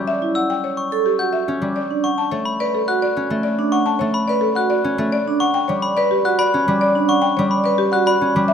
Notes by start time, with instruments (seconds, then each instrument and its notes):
Already playing: harp G3 C#4
0.08 marimba E5
0.22 vibraphone E4
0.35 marimba F#5, glockenspiel E6
0.50 marimba G5
0.64 marimba C#5
0.77 glockenspiel C#6
0.92 vibraphone A4
1.06 marimba G4
1.19 vibraphone F#4, marimba F#5, glockenspiel G6
1.33 marimba E5
1.48 harp C#4
1.62 harp G3
1.76 marimba D5
1.91 vibraphone D4
2.04 marimba F#5, glockenspiel C#6
2.18 marimba A5
2.31 harp A3, marimba C#5
2.45 glockenspiel B5
2.60 vibraphone B4, marimba D5
2.75 marimba A4
2.88 vibraphone F#4, marimba F#5, glockenspiel F#6
3.02 marimba D5
3.17 harp C#4
3.30 harp A3
3.43 marimba D5
3.59 vibraphone D4
3.72 marimba F#5, glockenspiel C#6
3.86 marimba A5
3.99 harp A3, marimba C#5
4.14 glockenspiel B5
4.28 vibraphone B4, marimba D5
4.41 marimba A4
4.55 vibraphone F#4, marimba F#5, glockenspiel F#6
4.70 marimba D5
4.84 harp C#4
4.98 harp A3
5.12 marimba D5
5.28 vibraphone D4
5.40 marimba F#5, glockenspiel C#6
5.54 marimba G5
5.68 harp G3, marimba C#5
5.82 glockenspiel B5
5.97 vibraphone B4, marimba D5
6.11 marimba G4
6.25 vibraphone F#4, marimba F#5, glockenspiel F#6
6.39 marimba D5, glockenspiel B5
6.54 harp C#4
6.68 harp G3
6.81 marimba D5
6.96 vibraphone D4
7.08 marimba F#5, glockenspiel C#6
7.22 marimba G5
7.37 harp G3, marimba C#5
7.51 glockenspiel B5
7.64 vibraphone B4, marimba D5
7.78 marimba G4
7.92 vibraphone F#4, marimba F#5, glockenspiel F#6
8.06 marimba D5, glockenspiel B5
8.21 harp C#4
8.36 harp G3
8.48 marimba E5